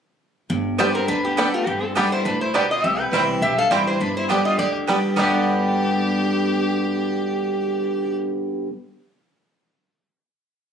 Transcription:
0.50 G1 G2
0.78 D3 G3 B3 D4 G4 C5 D5 G5
0.95 C4 A#4
1.08 D2 D3 D4 B4
1.25 B3 G4
1.37 D3 G3 B3 D4 G4 A4 D5 G5
1.54 A3 B3 F4 G4
1.67 G1 G2 B3 G4
1.83 C4 A4
1.95 D3 G3 B3 D4 G4 B4 D5 G5
2.12 E4 C5
2.25 D2 A2 D4 B4
2.41 E4 C5
2.54 B2 G3 B3 D4 G4 D5 G5
2.71 F4 D#5
2.84 C2 C3 G4 E5
3.00 B4 G5
3.12 C2 E3 G3 C4 E4 C5 G5
3.41 B1 G2 G4 E5
3.58 A4 F5
3.71 A1 E3 G3 C4 E4 G4 C5 D5 G5
3.87 E4 C5
4.00 G1 G2 D4 B4
4.16 E4 C5
4.29 D3 G3 B3 D4 G4 D5 G5
4.45 F4 D#5
4.58 D2 D3 G4 D5
4.87 D3 G3 B3 D4 G4 D5 G5
5.16 G1 G2 B2 D3 G3 B3 G4 D5 G5
5.21 D4 G4

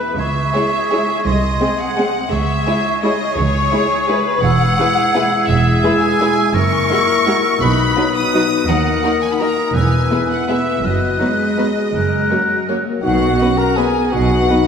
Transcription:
Already playing: B4 B5
0.18 C#2 G#4 E5 C#6
0.53 G#3 E4 G#4 C#5
0.90 G#3 E4 G#4 C#5
1.24 C2 G#4 D#5 C6
1.59 G#3 C4 G#4 D#5
1.78 F#5
1.96 G#3 C4 G#4 D#5
2.31 C#2 G#4 E5 C#6
2.66 G#3 E4 G#4 C#5
3.02 G#3 E4 G#4 C#5 D#5
3.35 C#2 G#4 C#5 C#6
3.72 G#3 E4 G#4 C#5
4.07 G#3 E4 G#4 B4 C#5
4.42 E1 E2 G#3 E4 G#4 F#5 E6
4.79 G#3 E4 G#4 B4
5.14 G#3 E4 G#4 B4
5.47 E1 E2 G#4 E5 E6
5.83 G#3 E4 G#4 B4
6.00 G#5
6.19 G#3 E4 G#4 B4
6.53 F#1 F#2 A#3 E4 A#4 C#6 E6
6.90 G#3 E4 F#4 A#4
7.26 G#3 E4 F#4 A#4
7.61 B1 B2 B3 D#4 B4 B5 D#6
7.96 F#3 D#4 F#4 B4
8.16 D#6
8.33 F#3 D#4 F#4 B4
8.67 D#2 A#3 A#4 F#5 D#6
9.02 D#3 D#4 F#4 A#4
9.21 G#5
9.32 B5
9.39 D#3 D#4 F#4 A#4 A#5 D#6
9.74 E1 E2 B3 E4 B4 G#5 E6
10.10 G#3 B3 E4 G#4
10.30 F#5
10.47 G#3 B3 E4 G#4 B4 E5 E6
10.83 F#1 F#2 F#4 B4 D#5 F#6
11.19 F#3 G#3 B3 D#4 B4
11.57 F#3 B3 D#4 B4
11.93 F#1 F#2 A#4 F#6
12.29 F#3 A#3 C#4 C#5
12.68 F#3 A#3 C#4 C#5
12.85 A#3
13.02 B1 B2 D#4 F#4 F#5
13.39 B3 C#4 B4 D#5
13.58 A#4 A#5
13.77 B3 G#4 B4 D#5 G#5
14.10 B1 B2 D#4 F#4 F#5
14.48 B3 D#4 B4 D#5

